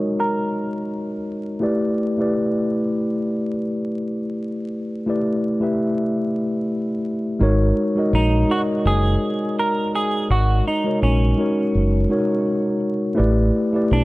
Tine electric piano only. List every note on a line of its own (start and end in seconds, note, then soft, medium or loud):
0.00 1.64 G#3 medium
0.00 1.64 D#4 medium
0.00 1.64 F#4 medium
0.00 1.64 A#4 medium
0.00 1.18 C#5 medium
0.00 1.64 D#5 medium
1.60 2.13 A3 loud
1.60 2.13 E4 medium
1.60 2.14 G4 medium
1.60 2.14 B4 medium
1.60 2.15 D5 loud
2.18 3.51 A3 medium
2.18 3.52 E4 medium
2.18 3.52 G4 medium
2.18 3.53 B4 medium
2.18 3.53 D5 medium
5.06 5.56 A3 medium
5.06 5.56 E4 medium
5.06 5.57 G4 medium
5.06 5.57 B4 medium
5.06 5.57 D5 medium
5.60 6.95 A3 medium
5.60 6.96 E4 medium
5.60 6.96 G4 medium
5.60 6.97 B4 medium
5.60 6.97 E5 medium
7.39 7.92 G#3 loud
7.39 7.93 D#4 loud
7.39 7.93 F#4 medium
7.39 7.93 A#4 medium
7.39 7.94 C#5 loud
7.95 8.45 G#3 medium
7.95 8.45 D#4 medium
7.95 8.46 F#4 medium
7.95 8.46 A#4 medium
7.95 8.47 D#5 medium
8.48 9.84 G#3 medium
8.48 9.84 D#4 medium
8.48 9.85 F#4 medium
8.48 9.85 A#4 medium
8.48 8.57 D5 medium
8.58 9.89 D#5 medium
10.84 11.34 G#3 medium
10.84 11.34 D#4 medium
10.84 11.35 F#4 medium
10.84 11.35 A#4 medium
10.84 11.35 C#5 medium
11.37 12.05 G#3 medium
11.37 12.06 D#4 medium
11.37 12.06 F#4 medium
11.37 12.07 A#4 medium
11.37 12.07 C#5 medium
12.09 13.11 G#3 medium
12.09 13.12 D#4 medium
12.09 13.12 F#4 medium
12.09 13.13 A#4 medium
12.09 13.13 C#5 medium
13.15 13.69 A3 loud
13.15 13.69 E4 medium
13.15 13.70 G4 medium
13.15 13.70 B4 loud
13.15 13.70 D5 loud
13.73 14.04 A3 medium
13.73 14.04 E4 medium
13.73 14.04 G4 medium
13.73 14.04 B4 medium
13.73 14.04 D5 medium